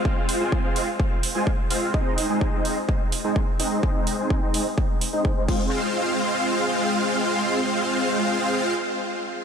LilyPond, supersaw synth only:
\new Staff \with { instrumentName = "Supersaw synth" } { \time 4/4 \key f \minor \tempo 4 = 127 <aes c' f' c'' f''>8. <aes c' f' c'' aes''>8 <aes c' f' c'' f''>8 r4 <aes c' f' c'' aes''>16 r8 <aes c' f' c'' f''>8 | <aes c' ees' c'' ees''>8. <aes c' ees' c'' aes''>8 <aes c' ees' c'' ees''>8 r4 <aes c' ees' c'' aes''>16 r8 <aes c' ees' c'' ees''>8 | <aes c' ees' c'' ees''>8. <aes c' ees' c'' aes''>8 <aes c' ees' c'' ees''>8 r4 <aes c' ees' c'' ees''>8 <aes c' ees' c'' f''>16 <aes c' f' c'' f''>8~ | <aes c' f' c'' f''>1~ |
<aes c' f' c'' f''>1 | }